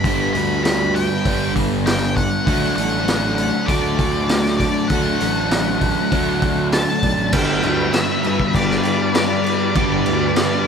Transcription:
Already playing: twelve-string acoustic guitar D4, lead electric guitar B5
0.04 fingered electric bass G1, overdriven electric guitar G2 D3 G3 B3 D4 G4, twelve-string acoustic guitar B3, kick, open hi-hat
0.33 fingered electric bass D2, twelve-string acoustic guitar B3, lead electric guitar B5, open hi-hat
0.64 twelve-string acoustic guitar D4, lead electric guitar B5, snare, open hi-hat
0.95 twelve-string acoustic guitar B3, lead electric guitar G5, open hi-hat
1.25 fingered electric bass G1, overdriven electric guitar G2 D3 G3 B3 D4 G4, twelve-string acoustic guitar D4, kick, open hi-hat
1.56 twelve-string acoustic guitar B3, kick, open hi-hat
1.87 twelve-string acoustic guitar B3, lead electric guitar G5, snare, open hi-hat
2.17 twelve-string acoustic guitar D4, lead electric guitar F#5, kick, open hi-hat
2.46 fingered electric bass D2, overdriven electric guitar D3 F#3 A3 D4 F#4, twelve-string acoustic guitar A3, kick, open hi-hat
2.76 fingered electric bass A1, twelve-string acoustic guitar A3, lead electric guitar F#5, open hi-hat
3.08 twelve-string acoustic guitar D4, snare, open hi-hat
3.35 twelve-string acoustic guitar A3, lead electric guitar F#5, open hi-hat
3.66 fingered electric bass D2, overdriven electric guitar D3 F#3 A3 D4, twelve-string acoustic guitar D4, lead electric guitar D5, kick, open hi-hat
3.71 overdriven electric guitar F#4
3.99 twelve-string acoustic guitar A3, kick, open hi-hat
4.29 twelve-string acoustic guitar A3, snare, open hi-hat
4.46 snare
4.57 twelve-string acoustic guitar D4, lead electric guitar D5, kick, snare, open hi-hat
4.88 fingered electric bass D2, overdriven electric guitar D3 F#3 A3, lead electric guitar F#5, kick, open hi-hat
4.92 twelve-string acoustic guitar A3, overdriven electric guitar D4 F#4
5.20 fingered electric bass A1, twelve-string acoustic guitar A3, open hi-hat
5.51 twelve-string acoustic guitar D4, snare, open hi-hat
5.81 twelve-string acoustic guitar A3, kick, open hi-hat
6.12 fingered electric bass D2, overdriven electric guitar D3 F#3 A3 D4 F#4, twelve-string acoustic guitar D4, kick, open hi-hat
6.42 twelve-string acoustic guitar A3, kick, open hi-hat
6.72 twelve-string acoustic guitar A3, lead electric guitar A5, snare, open hi-hat
7.03 fingered electric bass B1, twelve-string acoustic guitar D4, kick, open hi-hat
7.18 fingered electric bass A1
7.33 fingered electric bass G1, overdriven electric guitar G2 D3 G3 B3 D4 G4, twelve-string acoustic guitar B3, ambient pad G4 B4 D5 B5, lead electric guitar G5, kick, crash
7.62 fingered electric bass D2, twelve-string acoustic guitar B3, crash
7.93 twelve-string acoustic guitar B3, lead electric guitar E5, snare, crash
8.23 distorted electric guitar D3 G3, twelve-string acoustic guitar B3, crash
8.28 distorted electric guitar G2
8.40 kick
8.53 fingered electric bass G1, twelve-string acoustic guitar D4, lead electric guitar D5, kick, crash
8.71 snare
8.83 twelve-string acoustic guitar G4, crash
9.14 twelve-string acoustic guitar D4, lead electric guitar D5, snare, crash
9.44 twelve-string acoustic guitar B3, crash
9.75 fingered electric bass G1, overdriven electric guitar G2 D3 G3 B3 D4 G4, twelve-string acoustic guitar B3, lead electric guitar D5, ambient pad A5, kick, crash
10.06 fingered electric bass D2, twelve-string acoustic guitar B3, crash
10.36 twelve-string acoustic guitar B3, snare, crash

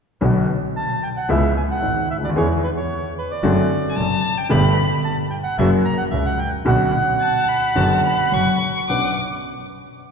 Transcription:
0.21 upright piano B1 B2 D3 F#3 B3 F#4, double bass B1
0.76 bandoneon A5
1.03 bandoneon G5
1.17 bandoneon F#5
1.29 upright piano C#2 C#3 G#3 B3 E4, double bass C#2, bandoneon E5
1.57 bandoneon G#5
1.71 bandoneon F#5
1.82 upright piano G#1 G#2, double bass G#1
2.11 double bass D2, bandoneon E5
2.18 upright piano C#2
2.23 upright piano D2, bandoneon D5
2.29 upright piano D#2
2.36 upright piano E2 E3 G#3 B3 G#4, double bass E2, bandoneon C#5
2.64 bandoneon B4
2.77 bandoneon C#5
3.19 bandoneon B4
3.31 bandoneon D5
3.43 double bass F#1, upright piano F#2 D3 F#3 A3 C4 F#4
3.89 violin G#5
3.96 double bass F#1, upright piano F#2 F#3, violin A5
4.38 violin G5
4.49 upright piano G1 G2 D3 A3 B3 G4, double bass G1, violin B5
5.04 bandoneon A5
5.30 bandoneon G5
5.44 bandoneon F#5
5.58 double bass F#1, upright piano F#2 C#3 F#3 A#3 F#4, bandoneon E5
5.85 bandoneon A#5
5.98 bandoneon F#5
6.11 double bass C#2, upright piano C#2 C#3, bandoneon E5
6.26 bandoneon F#5
6.39 bandoneon G5
6.65 upright piano B1 B2 D3 B3 C#4 F#4, double bass B1, bandoneon F#5
7.21 violin A5
7.49 violin B5
7.76 double bass F#1, upright piano F#1 F#2 D3 B3 C#4 F#4, violin A5
8.05 violin B5
8.32 double bass F#1, upright piano F#2 F#3, violin C#6
8.89 double bass B1, upright piano B1 C#4 D4 B4, bandoneon F#5, violin D6

